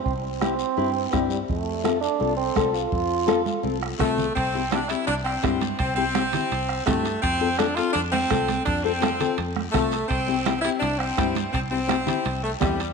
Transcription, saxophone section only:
X:1
M:4/4
L:1/16
Q:1/4=167
K:Cmix
V:1 name="Saxophone section"
z16 | z16 | z12 A,4 | C4 D2 E2 D2 C6 |
C2 C8- C2 A,4 | C4 D2 F2 D2 C6 | D2 C6- C z3 A,4 | C6 E2 D2 C6 |
C2 C8 A,2 G,4 |]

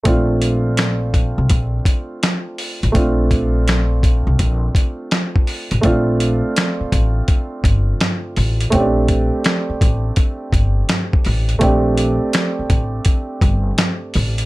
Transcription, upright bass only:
X:1
M:4/4
L:1/16
Q:"Swing 16ths" 1/4=83
K:Bb
V:1 name="Upright bass" clef=bass
B,,,6- B,,, C,, B,,,2 z4 z A,,, | B,,,6- B,,, C,, B,,,2 z4 z A,,, | B,,,4 z2 A,,,2 z2 G,,,2 z2 A,,,2 | B,,,4 z2 A,,,2 z2 G,,,2 z2 A,,,2 |
B,,,4 z2 A,,,2 z2 G,,,2 z2 A,,,2 |]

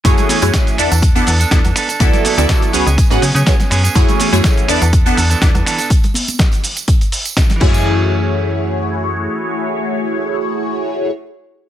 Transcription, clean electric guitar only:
X:1
M:4/4
L:1/16
Q:"Swing 16ths" 1/4=123
K:F#m
V:1 name="Clean electric guitar"
[E,A,CG]2 [E,A,CG]2 [E,A,CG]2 [B,DA] [DA]2 [DA] [B,DA] [B,DA]3 [B,DA] [DA] | [F,B,EA]2 [F,B,EA]2 [F,B,EA]2 [F,B,CG] [B,CG]2 [B,CG] [F,B,CG] [F,B,CG]3 [F,B,CG] [B,CG] | [E,A,CG]2 [E,A,CG]2 [E,A,CG]2 [E,B,DA] [B,DA]2 [B,DA] [E,B,DA] [E,B,DA]3 [E,B,DA] [B,DA] | z12 z2 [E,A,CG]2- |
[E,A,CG]16- | [E,A,CG]16 |]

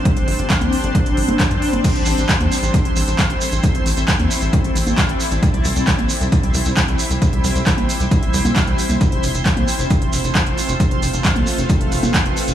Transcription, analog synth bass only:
X:1
M:4/4
L:1/16
Q:1/4=134
K:Am
V:1 name="Analog synth bass" clef=bass
z G,,, G,,, G,,, z D,, z G,,, z G,,, G,,, G,,, z G,, z G,,, | z A,,, A,,, A,,, z E,, z A,,, z A,,, A,,, A,,, z A,,, z A,,, | z A,,, A,,, A,,, z E,, z A,,, z A,,, A,,, A,,, z A,,, z A,,, | z C,, C,, C,, z G,,, z C,, z C,, C,, C,, z C,, z C,, |
z C,, C,, C,, z G,,, z C,, z G,,, C,, C,, z C,, z C,, | z F,,, F,,, F,,, z C,, z F,,, z F,,, F,,, F,,, z F,,, z F,,, | z F,,, F,,, F,,, z C,, z F,,, z F,,, F,,, F,,, z F,,, z F,,, |]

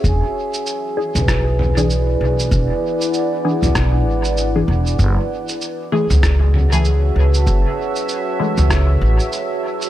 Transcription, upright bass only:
X:1
M:4/4
L:1/16
Q:"Swing 16ths" 1/4=97
K:F#m
V:1 name="Upright bass" clef=bass
E,,, z6 B,,,6- B,,, B,,,2 | E,,, z6 B,,, B,,,2 G,,,4 E,,,2 | F,,, z6 C,,6- C,, C,,2 | F,,, z6 C,,3 A,,, z4 z |]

